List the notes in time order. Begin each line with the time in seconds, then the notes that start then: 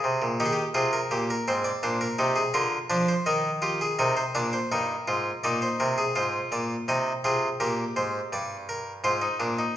Already playing: C4 G#4
0.04 C3
0.22 A#2
0.40 D#3 D#4 G4
0.46 G#4
0.53 G4
0.74 C3 F4 G#4
0.93 A#4
1.11 A#2 G4
1.30 A#4
1.48 G#2 C4 C5
1.64 D5
1.83 A#2 D4 C5
2.01 A#4
2.18 C3 D#4 G4
2.36 G#4
2.54 D3 F4 A#4
2.90 F3 D4 D5
3.08 C5
3.26 D#3 D#4 A#4
3.62 F4 G4
3.81 G#4
3.99 C3 D#4 A#4
4.17 C5
4.35 A#2 D4 D5
4.53 C5
4.72 G2 D#4 A#4
5.08 G#2 F4
5.44 A#2 D#4 D5
5.62 C5
5.80 C3 A#4
5.98 G#4
6.15 G#2 F4 C5
6.52 A#2 D5
6.88 C3 D#4 D#5
7.24 C3 F4 G#4
7.60 A#2 G4 A#4
7.96 G#2 C5
8.33 G2 D5
8.69 A#4
9.04 G#2 F4 C5
9.22 D#4
9.40 A#2 D4
9.59 D#4